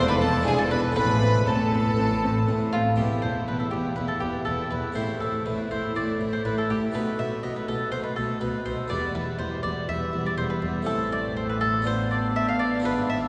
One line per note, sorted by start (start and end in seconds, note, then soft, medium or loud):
0.00 0.40 E1 medium
0.00 0.36 E2 medium
0.00 0.40 E2 medium
0.00 0.42 A3 medium
0.00 0.42 C4 medium
0.00 0.43 E4 medium
0.07 0.20 B4 medium
0.07 0.12 B5 loud
0.20 0.29 C4 medium
0.20 0.45 A4 medium
0.20 0.44 A4 medium
0.20 0.45 A5 loud
0.41 0.90 E1 medium
0.41 0.92 G#3 medium
0.41 0.93 D4 medium
0.41 0.93 E4 medium
0.41 0.58 G#4 medium
0.45 0.87 E2 medium
0.45 0.90 E2 medium
0.45 0.55 D4 medium
0.45 0.58 G#4 medium
0.45 0.58 G#5 loud
0.58 0.70 A4 medium
0.58 0.71 A5 medium
0.70 0.80 D4 medium
0.70 0.95 B4 medium
0.70 0.94 B4 medium
0.70 0.80 B5 loud
0.91 2.93 A3 medium
0.91 2.93 C4 medium
0.91 2.94 E4 medium
0.96 1.41 A1 medium
0.96 1.41 A2 medium
0.96 1.38 A2 medium
0.96 1.04 C4 medium
0.96 1.43 B4 loud
0.96 1.46 B4 loud
0.96 1.47 B5 loud
1.21 1.29 C4 medium
1.46 1.92 A1 medium
1.46 1.91 A2 medium
1.46 1.89 A2 medium
1.46 1.55 C4 medium
1.46 2.74 A4 medium
1.46 2.70 A4 medium
1.46 2.74 A5 medium
1.71 1.79 C4 medium
1.97 2.42 A1 medium
1.97 2.39 A2 medium
1.97 2.42 A2 medium
1.97 2.05 C4 medium
2.23 2.31 C4 medium
2.48 2.93 A1 medium
2.48 2.90 A2 medium
2.48 2.93 A2 medium
2.48 2.56 C4 medium
2.73 2.81 C4 medium
2.73 2.97 F4 medium
2.96 3.07 E1 soft
2.96 3.21 E2 soft
2.96 3.07 E2 soft
2.96 4.91 B3 soft
2.96 3.23 B3 soft
2.96 4.92 E4 soft
2.96 3.23 E4 soft
2.96 3.21 G4 soft
2.96 3.23 E5 soft
3.22 3.32 E1 soft
3.22 3.32 E2 soft
3.22 3.46 E2 soft
3.22 3.47 B3 soft
3.22 3.47 E4 soft
3.22 3.46 C5 medium
3.22 3.47 E5 soft
3.48 3.56 E1 soft
3.48 3.71 E2 soft
3.48 3.57 E2 soft
3.48 3.72 B3 soft
3.48 3.72 E4 soft
3.48 3.59 B4 medium
3.48 3.72 E5 soft
3.60 3.72 A4 soft
3.71 3.81 E1 soft
3.71 3.81 E2 soft
3.71 3.96 E2 soft
3.71 3.97 B3 soft
3.71 3.98 E4 soft
3.71 3.95 G4 medium
3.71 3.97 E5 soft
3.96 4.06 E1 soft
3.96 4.20 E2 soft
3.96 4.06 E2 soft
3.96 4.21 B3 soft
3.96 4.21 E4 soft
3.96 4.08 B4 medium
3.96 4.22 E5 soft
4.08 4.21 A4 medium
4.20 4.30 E1 soft
4.20 4.45 E2 soft
4.20 4.31 E2 soft
4.20 4.46 B3 soft
4.20 4.45 E4 soft
4.20 4.44 G4 medium
4.20 4.47 E5 soft
4.45 4.55 E1 soft
4.45 4.70 E2 soft
4.45 4.55 E2 soft
4.45 4.71 B3 soft
4.45 4.70 E4 soft
4.45 4.69 A4 medium
4.45 4.71 E5 soft
4.71 4.80 E1 soft
4.71 4.95 E2 soft
4.71 4.80 E2 soft
4.71 4.97 B3 soft
4.71 4.95 E4 soft
4.71 4.94 B4 medium
4.71 4.96 E5 soft
4.92 6.88 A3 soft
4.92 6.89 C4 soft
4.92 6.90 E4 soft
4.92 5.19 E4 soft
4.92 5.19 C5 medium
4.97 5.05 A1 soft
4.97 5.05 A2 soft
4.97 5.19 A2 soft
4.97 5.21 A3 soft
4.97 5.21 E5 soft
5.20 5.30 A1 soft
5.20 5.30 A2 soft
5.20 5.44 A2 soft
5.20 5.46 A3 soft
5.20 5.45 E4 soft
5.20 5.44 A4 medium
5.20 5.45 E5 soft
5.46 5.55 A1 soft
5.46 5.69 A2 soft
5.46 5.55 A2 soft
5.46 5.71 A3 soft
5.46 5.69 E4 soft
5.46 5.69 B4 medium
5.46 5.71 E5 soft
5.71 5.80 A1 soft
5.71 5.94 A2 soft
5.71 5.79 A2 soft
5.71 5.95 A3 soft
5.71 5.95 E4 soft
5.71 5.94 C5 medium
5.71 5.95 E5 soft
5.96 6.05 A1 soft
5.96 6.18 A2 soft
5.96 6.04 A2 soft
5.96 6.20 A3 soft
5.96 6.19 E4 soft
5.96 6.31 D5 medium
5.96 6.20 E5 soft
6.20 6.29 A1 soft
6.20 6.43 A2 soft
6.20 6.29 A2 soft
6.20 6.45 A3 soft
6.20 6.44 E4 soft
6.20 6.45 E5 soft
6.33 6.44 C5 medium
6.45 6.53 A1 soft
6.45 6.68 A2 soft
6.45 6.54 A2 soft
6.45 6.69 A3 soft
6.45 6.69 E4 soft
6.45 6.57 B4 medium
6.45 6.69 E5 soft
6.58 6.69 A4 medium
6.70 6.78 A1 soft
6.70 6.92 A2 soft
6.70 6.79 A2 soft
6.70 6.94 A3 soft
6.70 6.94 E4 soft
6.70 6.93 G4 medium
6.70 6.94 E5 soft
6.92 7.02 B1 medium
6.92 7.17 B2 soft
6.92 7.03 B2 medium
6.92 8.85 A3 soft
6.92 7.18 A3 soft
6.92 7.17 B3 soft
6.92 8.86 D#4 soft
6.92 7.18 B4 medium
6.92 7.17 D#5 soft
7.18 7.27 B1 soft
7.18 7.41 B2 soft
7.18 7.28 B2 soft
7.18 7.43 A3 soft
7.18 7.42 B3 soft
7.18 7.43 D#5 soft
7.18 7.42 E5 medium
7.43 7.52 B1 soft
7.43 7.52 B2 soft
7.43 7.66 B2 soft
7.43 7.68 A3 soft
7.43 7.68 B3 soft
7.43 7.55 D#5 medium
7.43 7.68 D#5 soft
7.56 7.68 B4 medium
7.68 7.77 B1 soft
7.68 7.76 B2 soft
7.68 7.91 B2 soft
7.68 7.92 A3 soft
7.68 7.91 B3 soft
7.68 7.91 A4 medium
7.68 7.91 D#5 soft
7.92 8.01 B1 soft
7.92 8.15 B2 soft
7.92 8.00 B2 soft
7.92 8.17 A3 soft
7.92 8.16 B3 soft
7.92 8.03 C5 medium
7.92 8.17 D#5 soft
8.03 8.16 B4 medium
8.16 8.25 B1 soft
8.16 8.26 B2 soft
8.16 8.40 B2 soft
8.16 8.41 A3 soft
8.16 8.41 B3 soft
8.16 8.40 A4 medium
8.16 8.40 D#5 soft
8.41 8.50 B1 soft
8.41 8.64 B2 soft
8.41 8.50 B2 medium
8.41 8.65 A3 soft
8.41 8.65 B3 soft
8.41 8.64 B4 medium
8.41 8.66 D#5 soft
8.66 8.75 B1 soft
8.66 8.88 B2 soft
8.66 8.75 B2 soft
8.66 8.91 A3 soft
8.66 8.90 B3 soft
8.66 8.89 C5 medium
8.66 8.91 D#5 soft
8.88 8.99 E1 medium
8.88 9.13 E2 soft
8.88 8.99 E2 medium
8.88 9.14 G3 soft
8.88 10.82 B3 soft
8.88 9.15 B3 soft
8.88 10.83 E4 soft
8.88 9.13 D5 medium
8.88 9.14 E5 medium
9.15 9.24 E1 soft
9.15 9.23 E2 soft
9.15 9.37 E2 soft
9.15 9.39 G3 soft
9.15 9.38 B3 soft
9.15 9.38 B4 medium
9.15 9.37 E5 soft
9.39 9.48 E1 medium
9.39 9.47 E2 soft
9.39 9.62 E2 soft
9.39 9.64 G3 soft
9.39 9.64 B3 soft
9.39 9.62 C5 medium
9.39 9.62 E5 soft
9.63 9.73 E1 soft
9.63 9.87 E2 soft
9.63 9.72 E2 soft
9.63 9.88 G3 soft
9.63 9.89 B3 soft
9.63 9.87 D5 medium
9.63 9.87 E5 soft
9.88 9.98 E1 medium
9.88 9.97 E2 medium
9.88 10.11 E2 soft
9.88 10.13 G3 soft
9.88 10.14 B3 soft
9.88 10.11 E5 soft
9.88 10.23 E5 medium
10.12 10.22 E1 soft
10.12 10.21 E2 medium
10.12 10.36 E2 soft
10.12 10.37 G3 soft
10.12 10.38 B3 soft
10.12 10.35 E5 soft
10.26 10.37 D5 medium
10.37 10.46 E1 medium
10.37 10.60 E2 soft
10.37 10.46 E2 medium
10.37 10.62 G3 soft
10.37 10.62 B3 soft
10.37 10.49 C5 medium
10.37 10.60 E5 soft
10.50 10.62 B4 medium
10.62 10.71 E1 soft
10.62 10.85 E2 soft
10.62 10.71 E2 soft
10.62 10.87 G3 soft
10.62 10.87 B3 soft
10.62 10.85 E5 soft
10.82 11.81 A3 soft
10.82 11.81 C4 soft
10.82 11.82 E4 soft
10.82 11.10 A4 medium
10.82 11.81 E5 medium
10.87 12.81 A1 medium
10.87 12.80 A2 soft
10.87 12.81 A2 medium
10.87 11.82 A3 soft
10.87 11.83 C4 medium
11.12 11.35 D5 medium
11.37 11.48 C5 medium
11.49 11.60 B4 medium
11.61 11.84 A4 medium
11.82 12.79 B3 soft
11.82 13.28 B3 medium
11.82 12.80 D4 soft
11.82 12.81 F4 soft
11.86 13.28 D4 medium
11.86 12.09 C5 medium
11.86 13.28 F5 medium
12.11 12.34 D5 medium
12.36 12.47 E5 medium
12.48 12.60 F5 medium
12.59 12.83 D5 medium
12.80 13.28 B3 soft
12.80 13.28 D4 soft
12.80 13.28 F4 soft
12.84 13.28 G#1 medium
12.84 13.28 G#2 soft
12.84 13.28 G#2 medium
12.84 13.08 B4 medium
13.10 13.28 E5 medium